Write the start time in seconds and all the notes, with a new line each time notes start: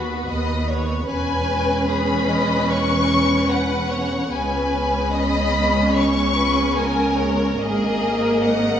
Already playing: D#2 B3 F#4 B4 B5
0.27 D#2 B3 B4 D#5
0.67 B3 B4 C#5
1.07 E1 E2 C#4 B4 G#5
1.89 G#4 B5
2.29 D#5
2.70 C#5 C#6
3.51 B4 F#5
3.89 C#5
4.31 C#2 B3 C#4 B4 G#5
5.12 D#5 B5
5.94 C#5 C#6
6.34 B4
6.77 A#4 G#5
7.18 C#5
7.59 G#1 G#2 A#3 G#4 A#4 D#5
8.42 D#5 F#5